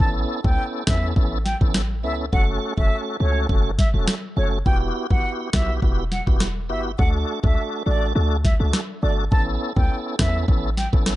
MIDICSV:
0, 0, Header, 1, 5, 480
1, 0, Start_track
1, 0, Time_signature, 4, 2, 24, 8
1, 0, Tempo, 582524
1, 9197, End_track
2, 0, Start_track
2, 0, Title_t, "Flute"
2, 0, Program_c, 0, 73
2, 363, Note_on_c, 0, 79, 77
2, 522, Note_off_c, 0, 79, 0
2, 718, Note_on_c, 0, 76, 84
2, 876, Note_off_c, 0, 76, 0
2, 1197, Note_on_c, 0, 79, 77
2, 1281, Note_off_c, 0, 79, 0
2, 1678, Note_on_c, 0, 76, 76
2, 1762, Note_off_c, 0, 76, 0
2, 1920, Note_on_c, 0, 78, 99
2, 2003, Note_off_c, 0, 78, 0
2, 2287, Note_on_c, 0, 76, 88
2, 2444, Note_off_c, 0, 76, 0
2, 2639, Note_on_c, 0, 73, 81
2, 2797, Note_off_c, 0, 73, 0
2, 3118, Note_on_c, 0, 76, 80
2, 3202, Note_off_c, 0, 76, 0
2, 3600, Note_on_c, 0, 73, 70
2, 3683, Note_off_c, 0, 73, 0
2, 3841, Note_on_c, 0, 79, 101
2, 3924, Note_off_c, 0, 79, 0
2, 4208, Note_on_c, 0, 78, 81
2, 4365, Note_off_c, 0, 78, 0
2, 4562, Note_on_c, 0, 76, 81
2, 4718, Note_off_c, 0, 76, 0
2, 5042, Note_on_c, 0, 78, 77
2, 5125, Note_off_c, 0, 78, 0
2, 5520, Note_on_c, 0, 76, 74
2, 5603, Note_off_c, 0, 76, 0
2, 5757, Note_on_c, 0, 78, 104
2, 5841, Note_off_c, 0, 78, 0
2, 6124, Note_on_c, 0, 76, 82
2, 6283, Note_off_c, 0, 76, 0
2, 6478, Note_on_c, 0, 74, 82
2, 6636, Note_off_c, 0, 74, 0
2, 6958, Note_on_c, 0, 76, 82
2, 7042, Note_off_c, 0, 76, 0
2, 7436, Note_on_c, 0, 74, 75
2, 7521, Note_off_c, 0, 74, 0
2, 7677, Note_on_c, 0, 81, 99
2, 7761, Note_off_c, 0, 81, 0
2, 8045, Note_on_c, 0, 79, 83
2, 8203, Note_off_c, 0, 79, 0
2, 8398, Note_on_c, 0, 76, 83
2, 8556, Note_off_c, 0, 76, 0
2, 8879, Note_on_c, 0, 79, 78
2, 8962, Note_off_c, 0, 79, 0
2, 9197, End_track
3, 0, Start_track
3, 0, Title_t, "Tonewheel organ"
3, 0, Program_c, 1, 16
3, 0, Note_on_c, 1, 59, 95
3, 0, Note_on_c, 1, 61, 85
3, 0, Note_on_c, 1, 64, 84
3, 1, Note_on_c, 1, 69, 108
3, 334, Note_off_c, 1, 59, 0
3, 335, Note_off_c, 1, 61, 0
3, 336, Note_off_c, 1, 64, 0
3, 337, Note_off_c, 1, 69, 0
3, 364, Note_on_c, 1, 59, 70
3, 366, Note_on_c, 1, 61, 64
3, 368, Note_on_c, 1, 64, 68
3, 369, Note_on_c, 1, 69, 79
3, 691, Note_off_c, 1, 59, 0
3, 692, Note_off_c, 1, 61, 0
3, 692, Note_off_c, 1, 64, 0
3, 693, Note_off_c, 1, 69, 0
3, 718, Note_on_c, 1, 59, 76
3, 719, Note_on_c, 1, 61, 69
3, 721, Note_on_c, 1, 64, 68
3, 723, Note_on_c, 1, 69, 83
3, 940, Note_off_c, 1, 59, 0
3, 941, Note_off_c, 1, 61, 0
3, 942, Note_off_c, 1, 64, 0
3, 943, Note_off_c, 1, 69, 0
3, 957, Note_on_c, 1, 59, 95
3, 959, Note_on_c, 1, 61, 83
3, 961, Note_on_c, 1, 64, 84
3, 963, Note_on_c, 1, 69, 104
3, 1139, Note_off_c, 1, 59, 0
3, 1139, Note_off_c, 1, 61, 0
3, 1140, Note_off_c, 1, 64, 0
3, 1141, Note_off_c, 1, 69, 0
3, 1325, Note_on_c, 1, 59, 75
3, 1326, Note_on_c, 1, 61, 67
3, 1327, Note_on_c, 1, 64, 71
3, 1329, Note_on_c, 1, 69, 84
3, 1498, Note_off_c, 1, 59, 0
3, 1499, Note_off_c, 1, 61, 0
3, 1500, Note_off_c, 1, 64, 0
3, 1501, Note_off_c, 1, 69, 0
3, 1677, Note_on_c, 1, 59, 75
3, 1678, Note_on_c, 1, 61, 66
3, 1680, Note_on_c, 1, 64, 72
3, 1682, Note_on_c, 1, 69, 86
3, 1858, Note_off_c, 1, 59, 0
3, 1859, Note_off_c, 1, 61, 0
3, 1860, Note_off_c, 1, 64, 0
3, 1861, Note_off_c, 1, 69, 0
3, 1916, Note_on_c, 1, 57, 94
3, 1918, Note_on_c, 1, 61, 88
3, 1920, Note_on_c, 1, 66, 83
3, 1922, Note_on_c, 1, 69, 101
3, 2254, Note_off_c, 1, 57, 0
3, 2255, Note_off_c, 1, 61, 0
3, 2256, Note_off_c, 1, 66, 0
3, 2257, Note_off_c, 1, 69, 0
3, 2283, Note_on_c, 1, 57, 70
3, 2285, Note_on_c, 1, 61, 65
3, 2287, Note_on_c, 1, 66, 65
3, 2288, Note_on_c, 1, 69, 80
3, 2610, Note_off_c, 1, 57, 0
3, 2611, Note_off_c, 1, 61, 0
3, 2612, Note_off_c, 1, 66, 0
3, 2613, Note_off_c, 1, 69, 0
3, 2636, Note_on_c, 1, 57, 73
3, 2638, Note_on_c, 1, 61, 67
3, 2640, Note_on_c, 1, 66, 70
3, 2642, Note_on_c, 1, 69, 82
3, 2859, Note_off_c, 1, 57, 0
3, 2860, Note_off_c, 1, 61, 0
3, 2861, Note_off_c, 1, 66, 0
3, 2862, Note_off_c, 1, 69, 0
3, 2877, Note_on_c, 1, 57, 92
3, 2879, Note_on_c, 1, 61, 83
3, 2880, Note_on_c, 1, 66, 80
3, 2882, Note_on_c, 1, 69, 99
3, 3059, Note_off_c, 1, 57, 0
3, 3059, Note_off_c, 1, 61, 0
3, 3060, Note_off_c, 1, 66, 0
3, 3061, Note_off_c, 1, 69, 0
3, 3245, Note_on_c, 1, 57, 75
3, 3247, Note_on_c, 1, 61, 69
3, 3249, Note_on_c, 1, 66, 64
3, 3251, Note_on_c, 1, 69, 80
3, 3419, Note_off_c, 1, 57, 0
3, 3419, Note_off_c, 1, 61, 0
3, 3421, Note_off_c, 1, 66, 0
3, 3421, Note_off_c, 1, 69, 0
3, 3597, Note_on_c, 1, 57, 74
3, 3598, Note_on_c, 1, 61, 66
3, 3600, Note_on_c, 1, 66, 67
3, 3602, Note_on_c, 1, 69, 86
3, 3778, Note_off_c, 1, 57, 0
3, 3779, Note_off_c, 1, 61, 0
3, 3780, Note_off_c, 1, 66, 0
3, 3781, Note_off_c, 1, 69, 0
3, 3837, Note_on_c, 1, 59, 94
3, 3839, Note_on_c, 1, 64, 85
3, 3841, Note_on_c, 1, 66, 84
3, 3842, Note_on_c, 1, 67, 107
3, 4175, Note_off_c, 1, 59, 0
3, 4175, Note_off_c, 1, 64, 0
3, 4176, Note_off_c, 1, 66, 0
3, 4177, Note_off_c, 1, 67, 0
3, 4204, Note_on_c, 1, 59, 69
3, 4205, Note_on_c, 1, 64, 65
3, 4206, Note_on_c, 1, 66, 66
3, 4209, Note_on_c, 1, 67, 76
3, 4531, Note_off_c, 1, 59, 0
3, 4531, Note_off_c, 1, 64, 0
3, 4532, Note_off_c, 1, 66, 0
3, 4533, Note_off_c, 1, 67, 0
3, 4557, Note_on_c, 1, 59, 74
3, 4558, Note_on_c, 1, 64, 66
3, 4560, Note_on_c, 1, 66, 68
3, 4562, Note_on_c, 1, 67, 86
3, 4780, Note_off_c, 1, 59, 0
3, 4781, Note_off_c, 1, 64, 0
3, 4782, Note_off_c, 1, 66, 0
3, 4782, Note_off_c, 1, 67, 0
3, 4797, Note_on_c, 1, 59, 92
3, 4798, Note_on_c, 1, 64, 83
3, 4800, Note_on_c, 1, 66, 82
3, 4802, Note_on_c, 1, 67, 97
3, 4979, Note_off_c, 1, 59, 0
3, 4979, Note_off_c, 1, 64, 0
3, 4980, Note_off_c, 1, 66, 0
3, 4981, Note_off_c, 1, 67, 0
3, 5162, Note_on_c, 1, 59, 78
3, 5164, Note_on_c, 1, 64, 70
3, 5166, Note_on_c, 1, 66, 67
3, 5168, Note_on_c, 1, 67, 80
3, 5337, Note_off_c, 1, 59, 0
3, 5338, Note_off_c, 1, 64, 0
3, 5339, Note_off_c, 1, 66, 0
3, 5340, Note_off_c, 1, 67, 0
3, 5516, Note_on_c, 1, 59, 73
3, 5517, Note_on_c, 1, 64, 69
3, 5519, Note_on_c, 1, 66, 68
3, 5520, Note_on_c, 1, 67, 82
3, 5698, Note_off_c, 1, 59, 0
3, 5698, Note_off_c, 1, 64, 0
3, 5699, Note_off_c, 1, 66, 0
3, 5700, Note_off_c, 1, 67, 0
3, 5755, Note_on_c, 1, 57, 95
3, 5757, Note_on_c, 1, 62, 89
3, 5758, Note_on_c, 1, 66, 87
3, 5760, Note_on_c, 1, 69, 105
3, 6094, Note_off_c, 1, 57, 0
3, 6094, Note_off_c, 1, 62, 0
3, 6095, Note_off_c, 1, 66, 0
3, 6096, Note_off_c, 1, 69, 0
3, 6123, Note_on_c, 1, 57, 69
3, 6125, Note_on_c, 1, 62, 66
3, 6127, Note_on_c, 1, 66, 66
3, 6128, Note_on_c, 1, 69, 80
3, 6450, Note_off_c, 1, 57, 0
3, 6451, Note_off_c, 1, 62, 0
3, 6452, Note_off_c, 1, 66, 0
3, 6453, Note_off_c, 1, 69, 0
3, 6476, Note_on_c, 1, 57, 78
3, 6477, Note_on_c, 1, 62, 71
3, 6479, Note_on_c, 1, 66, 69
3, 6480, Note_on_c, 1, 69, 82
3, 6699, Note_off_c, 1, 57, 0
3, 6700, Note_off_c, 1, 62, 0
3, 6701, Note_off_c, 1, 66, 0
3, 6701, Note_off_c, 1, 69, 0
3, 6715, Note_on_c, 1, 57, 93
3, 6716, Note_on_c, 1, 62, 83
3, 6718, Note_on_c, 1, 66, 81
3, 6720, Note_on_c, 1, 69, 100
3, 6898, Note_off_c, 1, 57, 0
3, 6898, Note_off_c, 1, 62, 0
3, 6899, Note_off_c, 1, 66, 0
3, 6900, Note_off_c, 1, 69, 0
3, 7081, Note_on_c, 1, 57, 75
3, 7083, Note_on_c, 1, 62, 68
3, 7084, Note_on_c, 1, 66, 72
3, 7086, Note_on_c, 1, 69, 83
3, 7256, Note_off_c, 1, 57, 0
3, 7257, Note_off_c, 1, 62, 0
3, 7258, Note_off_c, 1, 66, 0
3, 7259, Note_off_c, 1, 69, 0
3, 7436, Note_on_c, 1, 57, 77
3, 7437, Note_on_c, 1, 62, 69
3, 7440, Note_on_c, 1, 66, 71
3, 7441, Note_on_c, 1, 69, 84
3, 7618, Note_off_c, 1, 57, 0
3, 7618, Note_off_c, 1, 62, 0
3, 7620, Note_off_c, 1, 66, 0
3, 7620, Note_off_c, 1, 69, 0
3, 7676, Note_on_c, 1, 59, 98
3, 7678, Note_on_c, 1, 61, 88
3, 7680, Note_on_c, 1, 64, 87
3, 7681, Note_on_c, 1, 69, 103
3, 8014, Note_off_c, 1, 59, 0
3, 8015, Note_off_c, 1, 61, 0
3, 8016, Note_off_c, 1, 64, 0
3, 8017, Note_off_c, 1, 69, 0
3, 8043, Note_on_c, 1, 59, 73
3, 8044, Note_on_c, 1, 61, 67
3, 8046, Note_on_c, 1, 64, 67
3, 8048, Note_on_c, 1, 69, 77
3, 8370, Note_off_c, 1, 59, 0
3, 8371, Note_off_c, 1, 61, 0
3, 8372, Note_off_c, 1, 64, 0
3, 8373, Note_off_c, 1, 69, 0
3, 8396, Note_on_c, 1, 59, 73
3, 8398, Note_on_c, 1, 61, 72
3, 8400, Note_on_c, 1, 64, 71
3, 8401, Note_on_c, 1, 69, 84
3, 8619, Note_off_c, 1, 59, 0
3, 8620, Note_off_c, 1, 61, 0
3, 8621, Note_off_c, 1, 64, 0
3, 8622, Note_off_c, 1, 69, 0
3, 8635, Note_on_c, 1, 59, 90
3, 8637, Note_on_c, 1, 61, 84
3, 8639, Note_on_c, 1, 64, 83
3, 8640, Note_on_c, 1, 69, 103
3, 8817, Note_off_c, 1, 59, 0
3, 8818, Note_off_c, 1, 61, 0
3, 8819, Note_off_c, 1, 64, 0
3, 8820, Note_off_c, 1, 69, 0
3, 9003, Note_on_c, 1, 59, 71
3, 9004, Note_on_c, 1, 61, 66
3, 9005, Note_on_c, 1, 64, 70
3, 9006, Note_on_c, 1, 69, 82
3, 9177, Note_off_c, 1, 59, 0
3, 9178, Note_off_c, 1, 61, 0
3, 9179, Note_off_c, 1, 64, 0
3, 9179, Note_off_c, 1, 69, 0
3, 9197, End_track
4, 0, Start_track
4, 0, Title_t, "808-style bass"
4, 0, Program_c, 2, 38
4, 0, Note_on_c, 2, 33, 107
4, 211, Note_off_c, 2, 33, 0
4, 366, Note_on_c, 2, 37, 95
4, 466, Note_off_c, 2, 37, 0
4, 719, Note_on_c, 2, 40, 92
4, 931, Note_off_c, 2, 40, 0
4, 958, Note_on_c, 2, 33, 107
4, 1283, Note_off_c, 2, 33, 0
4, 1327, Note_on_c, 2, 33, 86
4, 1678, Note_on_c, 2, 37, 87
4, 1690, Note_off_c, 2, 33, 0
4, 1891, Note_off_c, 2, 37, 0
4, 1919, Note_on_c, 2, 30, 111
4, 2131, Note_off_c, 2, 30, 0
4, 2287, Note_on_c, 2, 30, 92
4, 2387, Note_off_c, 2, 30, 0
4, 2639, Note_on_c, 2, 37, 93
4, 2851, Note_off_c, 2, 37, 0
4, 2879, Note_on_c, 2, 30, 99
4, 3204, Note_off_c, 2, 30, 0
4, 3246, Note_on_c, 2, 28, 86
4, 3346, Note_off_c, 2, 28, 0
4, 3599, Note_on_c, 2, 30, 91
4, 3811, Note_off_c, 2, 30, 0
4, 3839, Note_on_c, 2, 28, 105
4, 4051, Note_off_c, 2, 28, 0
4, 4207, Note_on_c, 2, 31, 88
4, 4306, Note_off_c, 2, 31, 0
4, 4560, Note_on_c, 2, 35, 99
4, 4772, Note_off_c, 2, 35, 0
4, 4799, Note_on_c, 2, 28, 108
4, 5124, Note_off_c, 2, 28, 0
4, 5168, Note_on_c, 2, 28, 77
4, 5520, Note_on_c, 2, 31, 96
4, 5532, Note_off_c, 2, 28, 0
4, 5732, Note_off_c, 2, 31, 0
4, 5760, Note_on_c, 2, 38, 103
4, 5972, Note_off_c, 2, 38, 0
4, 6128, Note_on_c, 2, 37, 88
4, 6227, Note_off_c, 2, 37, 0
4, 6480, Note_on_c, 2, 33, 86
4, 6692, Note_off_c, 2, 33, 0
4, 6721, Note_on_c, 2, 38, 111
4, 7045, Note_off_c, 2, 38, 0
4, 7087, Note_on_c, 2, 37, 83
4, 7187, Note_off_c, 2, 37, 0
4, 7439, Note_on_c, 2, 31, 89
4, 7652, Note_off_c, 2, 31, 0
4, 7679, Note_on_c, 2, 33, 110
4, 7891, Note_off_c, 2, 33, 0
4, 8047, Note_on_c, 2, 37, 96
4, 8146, Note_off_c, 2, 37, 0
4, 8398, Note_on_c, 2, 40, 94
4, 8611, Note_off_c, 2, 40, 0
4, 8638, Note_on_c, 2, 33, 109
4, 8963, Note_off_c, 2, 33, 0
4, 9007, Note_on_c, 2, 33, 90
4, 9197, Note_off_c, 2, 33, 0
4, 9197, End_track
5, 0, Start_track
5, 0, Title_t, "Drums"
5, 0, Note_on_c, 9, 36, 110
5, 81, Note_off_c, 9, 36, 0
5, 366, Note_on_c, 9, 36, 94
5, 449, Note_off_c, 9, 36, 0
5, 717, Note_on_c, 9, 38, 114
5, 718, Note_on_c, 9, 37, 91
5, 719, Note_on_c, 9, 36, 81
5, 800, Note_off_c, 9, 37, 0
5, 800, Note_off_c, 9, 38, 0
5, 801, Note_off_c, 9, 36, 0
5, 958, Note_on_c, 9, 36, 86
5, 1040, Note_off_c, 9, 36, 0
5, 1199, Note_on_c, 9, 38, 62
5, 1282, Note_off_c, 9, 38, 0
5, 1327, Note_on_c, 9, 36, 91
5, 1410, Note_off_c, 9, 36, 0
5, 1437, Note_on_c, 9, 37, 82
5, 1437, Note_on_c, 9, 38, 103
5, 1519, Note_off_c, 9, 37, 0
5, 1519, Note_off_c, 9, 38, 0
5, 1919, Note_on_c, 9, 36, 112
5, 2001, Note_off_c, 9, 36, 0
5, 2287, Note_on_c, 9, 36, 89
5, 2370, Note_off_c, 9, 36, 0
5, 2879, Note_on_c, 9, 36, 86
5, 2961, Note_off_c, 9, 36, 0
5, 3120, Note_on_c, 9, 36, 96
5, 3120, Note_on_c, 9, 38, 64
5, 3202, Note_off_c, 9, 36, 0
5, 3203, Note_off_c, 9, 38, 0
5, 3358, Note_on_c, 9, 37, 80
5, 3358, Note_on_c, 9, 38, 103
5, 3440, Note_off_c, 9, 38, 0
5, 3441, Note_off_c, 9, 37, 0
5, 3839, Note_on_c, 9, 36, 109
5, 3922, Note_off_c, 9, 36, 0
5, 4208, Note_on_c, 9, 36, 92
5, 4290, Note_off_c, 9, 36, 0
5, 4559, Note_on_c, 9, 37, 90
5, 4559, Note_on_c, 9, 38, 110
5, 4560, Note_on_c, 9, 36, 78
5, 4642, Note_off_c, 9, 37, 0
5, 4642, Note_off_c, 9, 38, 0
5, 4643, Note_off_c, 9, 36, 0
5, 4799, Note_on_c, 9, 36, 88
5, 4881, Note_off_c, 9, 36, 0
5, 5040, Note_on_c, 9, 38, 63
5, 5122, Note_off_c, 9, 38, 0
5, 5168, Note_on_c, 9, 36, 91
5, 5251, Note_off_c, 9, 36, 0
5, 5277, Note_on_c, 9, 37, 86
5, 5277, Note_on_c, 9, 38, 104
5, 5359, Note_off_c, 9, 37, 0
5, 5359, Note_off_c, 9, 38, 0
5, 5760, Note_on_c, 9, 36, 107
5, 5842, Note_off_c, 9, 36, 0
5, 6128, Note_on_c, 9, 36, 97
5, 6210, Note_off_c, 9, 36, 0
5, 6959, Note_on_c, 9, 36, 94
5, 6959, Note_on_c, 9, 38, 63
5, 7042, Note_off_c, 9, 36, 0
5, 7042, Note_off_c, 9, 38, 0
5, 7197, Note_on_c, 9, 37, 86
5, 7197, Note_on_c, 9, 38, 101
5, 7279, Note_off_c, 9, 37, 0
5, 7279, Note_off_c, 9, 38, 0
5, 7679, Note_on_c, 9, 36, 111
5, 7761, Note_off_c, 9, 36, 0
5, 8047, Note_on_c, 9, 36, 92
5, 8129, Note_off_c, 9, 36, 0
5, 8397, Note_on_c, 9, 37, 91
5, 8397, Note_on_c, 9, 38, 114
5, 8399, Note_on_c, 9, 36, 79
5, 8479, Note_off_c, 9, 38, 0
5, 8480, Note_off_c, 9, 37, 0
5, 8481, Note_off_c, 9, 36, 0
5, 8638, Note_on_c, 9, 36, 85
5, 8720, Note_off_c, 9, 36, 0
5, 8878, Note_on_c, 9, 38, 64
5, 8960, Note_off_c, 9, 38, 0
5, 9007, Note_on_c, 9, 36, 89
5, 9089, Note_off_c, 9, 36, 0
5, 9115, Note_on_c, 9, 37, 84
5, 9115, Note_on_c, 9, 38, 105
5, 9197, Note_off_c, 9, 37, 0
5, 9197, Note_off_c, 9, 38, 0
5, 9197, End_track
0, 0, End_of_file